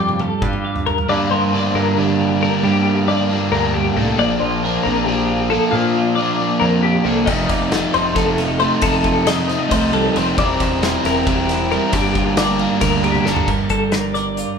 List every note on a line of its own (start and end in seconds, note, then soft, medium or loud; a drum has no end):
0.00 0.29 F2 medium
0.00 1.06 G2 medium
0.00 0.20 G3 medium
0.00 0.43 F4 medium
0.00 0.20 G4 medium
0.00 0.64 D5 medium
0.09 high tom medium
0.19 2.40 G3 medium
0.19 0.43 A4 medium
0.19 high tom medium
0.42 0.96 G2 loud
0.42 1.07 F4 medium
0.42 0.86 G4 medium
0.42 kick medium
0.42 mid tom medium
0.53 mid tom medium
0.65 1.06 F5 medium
0.76 floor tom medium
0.87 1.09 A#4 medium
0.87 1.06 A#4 medium
0.87 floor tom medium
0.98 floor tom medium
1.07 2.63 G2 medium
1.07 1.52 G2 medium
1.07 1.27 G2 loud
1.07 1.52 D3 medium
1.07 1.53 G3 medium
1.07 1.54 A#3 loud
1.07 1.31 D5 medium
1.12 1.55 D4 loud
1.31 1.68 G2 medium
1.31 2.20 A#4 medium
1.31 1.75 C5 medium
1.52 1.97 G2 medium
1.52 1.96 D3 medium
1.52 1.76 G3 medium
1.52 1.76 A#3 medium
1.52 1.74 D4 loud
1.52 3.09 D5 medium
1.75 2.47 G2 medium
1.75 1.97 G3 medium
1.75 1.98 A#3 medium
1.75 1.99 D4 medium
1.75 2.68 F4 medium
1.75 1.98 A#4 medium
1.97 2.40 D3 medium
1.97 2.64 D3 medium
1.97 2.41 G3 medium
1.97 2.43 A#3 medium
1.97 2.44 D4 medium
1.97 2.42 G4 medium
2.20 2.87 A#4 medium
2.41 2.62 D3 medium
2.41 4.18 G3 medium
2.41 2.63 G3 medium
2.41 2.64 A#3 medium
2.41 2.65 D4 medium
2.41 2.64 A#4 medium
2.62 3.06 G2 medium
2.62 3.75 G2 medium
2.62 3.07 D3 medium
2.62 3.36 G3 medium
2.62 3.07 G3 medium
2.62 3.09 A#3 loud
2.62 3.10 D4 medium
2.62 3.08 G4 medium
2.87 4.42 A#4 medium
3.07 3.52 G2 medium
3.07 3.50 D3 medium
3.07 3.31 G3 loud
3.07 3.31 A#3 loud
3.07 3.29 D4 loud
3.07 3.52 D5 medium
3.07 4.63 D5 medium
3.29 3.51 G3 medium
3.29 3.53 A#3 medium
3.29 3.54 D4 medium
3.29 4.42 F4 medium
3.51 3.88 D2 medium
3.51 3.95 D3 medium
3.51 3.96 G3 medium
3.51 3.97 A#3 medium
3.51 3.99 D4 medium
3.51 3.74 A#4 medium
3.74 3.96 G2 medium
3.74 3.97 G4 medium
3.96 4.14 C2 medium
3.96 4.17 A2 medium
3.96 4.17 D3 medium
3.96 4.18 G3 medium
3.96 4.20 A#3 medium
3.96 4.21 D4 medium
3.96 4.19 A4 medium
4.18 4.37 A#1 loud
4.18 5.70 A#2 medium
4.18 4.63 A#2 medium
4.18 4.64 F3 medium
4.18 4.65 A#3 medium
4.18 4.65 D4 loud
4.18 4.40 D5 loud
4.40 4.77 A#1 medium
4.40 5.28 F4 medium
4.40 4.85 C5 medium
4.63 5.06 A#2 medium
4.63 4.87 F3 loud
4.63 4.85 A#3 loud
4.63 4.84 D4 loud
4.63 5.71 A#4 medium
4.83 5.58 A#1 loud
4.83 5.07 A#3 medium
4.83 4.96 C4 medium
4.83 5.08 D4 medium
4.83 5.06 A#4 medium
4.88 5.08 F3 medium
4.96 5.73 D4 medium
5.06 5.49 A#2 medium
5.06 6.62 F3 medium
5.06 5.51 F3 medium
5.06 5.52 A#3 medium
5.06 5.52 D4 medium
5.06 5.50 G4 medium
5.29 5.97 F4 medium
5.50 5.72 A#2 medium
5.50 5.73 F3 loud
5.50 5.70 A#3 medium
5.50 5.74 A#3 medium
5.50 5.75 D4 loud
5.50 5.73 A4 medium
5.71 7.25 A#2 medium
5.71 6.15 A#2 medium
5.71 6.45 A#2 loud
5.71 6.17 F3 loud
5.71 6.18 A#3 medium
5.71 6.16 F4 loud
5.76 6.18 D4 medium
5.97 6.84 F4 medium
6.15 6.60 A#2 medium
6.15 6.42 F3 loud
6.15 6.39 A#3 loud
6.15 6.61 D5 medium
6.20 6.38 D4 loud
6.20 7.27 A#4 medium
6.39 6.62 F3 medium
6.39 6.63 A#3 medium
6.39 6.64 D4 medium
6.39 7.26 D4 soft
6.60 6.97 F2 loud
6.60 7.03 A#2 medium
6.60 7.26 F3 medium
6.60 7.06 F3 medium
6.60 6.82 A#4 medium
6.64 7.06 A#3 medium
6.64 7.06 D4 medium
6.83 7.50 F4 medium
6.83 7.04 G4 medium
7.04 7.24 C2 medium
7.04 7.26 A#2 medium
7.04 7.28 F3 medium
7.04 7.25 A#3 medium
7.04 7.27 A#3 medium
7.04 7.27 D4 medium
7.04 7.27 A4 medium
7.26 7.46 F1 loud
7.26 7.71 F2 medium
7.26 7.72 C3 medium
7.26 7.72 D#3 loud
7.26 8.14 F3 medium
7.26 7.74 A3 loud
7.26 7.74 D#4 loud
7.26 7.49 D#5 medium
7.26 kick loud
7.26 crash loud
7.49 7.86 F1 medium
7.49 8.38 F4 medium
7.49 7.94 D5 medium
7.49 kick medium
7.49 ride medium
7.72 8.16 F2 loud
7.72 8.16 C3 loud
7.72 7.96 D#3 medium
7.72 7.94 A3 loud
7.72 7.93 D#4 loud
7.72 9.25 A4 medium
7.72 snare loud
7.72 ride medium
7.94 8.67 F1 medium
7.94 8.16 D#3 medium
7.94 8.18 A3 medium
7.94 8.18 D#4 medium
7.94 8.81 D#4 soft
7.94 8.16 C5 medium
7.94 ride medium
8.15 8.59 C3 medium
8.15 8.60 D#3 medium
8.15 8.80 F3 medium
8.15 8.61 A3 medium
8.15 8.60 A4 medium
8.15 kick loud
8.15 snare soft
8.15 ride medium
8.20 8.62 D#4 medium
8.38 8.80 F4 medium
8.38 snare soft
8.38 ride medium
8.60 8.83 C3 medium
8.60 8.83 D#3 medium
8.60 8.80 A3 medium
8.60 8.84 A3 medium
8.60 8.85 D#4 medium
8.60 8.82 C5 medium
8.60 ride medium
8.81 9.55 F2 medium
8.81 9.26 F2 medium
8.81 9.26 C3 medium
8.81 9.27 D#3 medium
8.81 10.12 F3 medium
8.81 9.28 A3 medium
8.81 9.27 A4 loud
8.81 kick loud
8.81 ride loud
8.86 9.29 D#4 loud
9.04 10.35 F4 medium
9.04 kick medium
9.04 ride medium
9.27 9.71 F2 loud
9.27 9.70 C3 loud
9.27 9.51 D#3 loud
9.27 9.50 A3 loud
9.27 9.48 D#4 loud
9.27 10.37 A4 medium
9.27 9.71 D#5 medium
9.27 snare loud
9.27 ride medium
9.48 9.73 A3 medium
9.48 9.59 C4 soft
9.48 9.74 D#4 medium
9.48 snare soft
9.48 ride medium
9.52 9.71 D#3 medium
9.59 10.37 D#4 soft
9.69 10.07 C2 medium
9.69 10.16 C3 medium
9.69 10.17 D#3 medium
9.69 9.92 A3 medium
9.69 9.93 C5 medium
9.69 kick medium
9.69 ride loud
9.74 10.18 A3 loud
9.74 10.19 D#4 medium
9.92 10.15 G3 medium
9.92 10.17 A4 medium
9.92 ride medium
10.13 10.34 F1 medium
10.13 10.37 C3 medium
10.13 10.37 F3 medium
10.13 10.38 C5 medium
10.13 ride medium
10.18 10.38 D#3 medium
10.18 10.38 A3 medium
10.18 10.39 D#4 medium
10.38 10.56 E1 loud
10.38 11.25 E3 medium
10.38 10.81 E3 medium
10.38 10.83 G3 medium
10.38 10.83 C4 medium
10.38 10.83 E4 loud
10.38 10.84 A#4 medium
10.38 10.61 D5 medium
10.38 kick loud
10.38 ride medium
10.60 10.96 E1 medium
10.60 11.49 E4 medium
10.60 11.05 C5 medium
10.60 kick medium
10.60 ride medium
10.82 11.26 E3 medium
10.82 11.27 G3 loud
10.82 11.06 C4 loud
10.82 11.05 E4 loud
10.82 11.04 A#4 loud
10.82 11.90 C5 medium
10.82 snare loud
10.82 ride medium
11.04 11.77 E1 medium
11.04 11.93 C4 soft
11.04 11.28 C4 medium
11.04 11.29 E4 medium
11.04 11.30 A#4 medium
11.04 11.27 A#4 medium
11.04 snare soft
11.04 ride medium
11.26 11.90 E3 medium
11.26 11.70 G3 medium
11.26 11.71 C4 medium
11.26 11.72 E4 medium
11.26 11.71 G4 medium
11.26 kick loud
11.26 ride medium
11.31 11.73 A#4 medium
11.49 11.94 E4 medium
11.49 snare soft
11.49 ride medium
11.70 11.94 G3 medium
11.70 13.26 G3 medium
11.70 11.92 C4 medium
11.70 11.93 E4 medium
11.70 11.93 A#4 medium
11.70 11.95 A#4 medium
11.70 ride medium
11.93 12.65 G1 loud
11.93 12.36 G2 medium
11.93 13.46 G2 medium
11.93 12.37 D3 medium
11.93 12.37 G3 medium
11.93 12.38 A#3 loud
11.93 12.38 D4 medium
11.93 12.37 G4 medium
11.93 12.39 A#4 medium
11.93 kick loud
11.93 ride medium
12.15 13.04 F4 medium
12.15 kick medium
12.15 ride medium
12.37 12.81 G2 loud
12.37 12.82 D3 medium
12.37 12.61 G3 loud
12.37 12.60 A#3 loud
12.37 12.58 D4 medium
12.37 13.46 A#4 medium
12.37 12.58 A#4 loud
12.37 12.82 D5 medium
12.37 snare loud
12.37 ride medium
12.59 12.79 G3 medium
12.59 12.81 A#3 medium
12.59 12.81 D4 medium
12.59 13.46 D4 soft
12.59 12.83 A#4 medium
12.59 ride medium
12.80 13.18 D2 loud
12.80 13.48 D3 medium
12.80 13.24 G3 medium
12.80 13.25 A#3 medium
12.80 13.26 D4 medium
12.80 13.04 A#4 medium
12.80 13.27 A#4 medium
12.80 kick medium
12.80 snare soft
12.80 ride loud
13.04 13.46 F4 medium
13.04 13.25 G4 medium
13.04 ride medium
13.15 high tom medium
13.25 13.44 G1 medium
13.25 13.46 G3 medium
13.25 13.68 G3 medium
13.25 13.47 A#3 medium
13.25 13.47 D4 loud
13.25 13.48 A4 medium
13.25 13.48 A#4 medium
13.25 snare medium
13.36 floor tom loud
13.48 13.66 G1 medium
13.48 14.59 G2 medium
13.48 14.15 A#4 medium
13.48 kick loud
13.48 crash medium
13.69 14.43 G1 medium
13.69 14.59 G3 medium
13.69 13.92 A4 medium
13.69 kick medium
13.69 closed hi-hat medium
13.92 14.59 D4 medium
13.92 14.15 A#4 medium
13.92 snare loud
13.92 closed hi-hat medium
14.14 14.59 A#4 soft
14.14 14.59 D5 medium
14.14 snare soft
14.14 closed hi-hat medium
14.37 14.59 F4 medium
14.37 closed hi-hat medium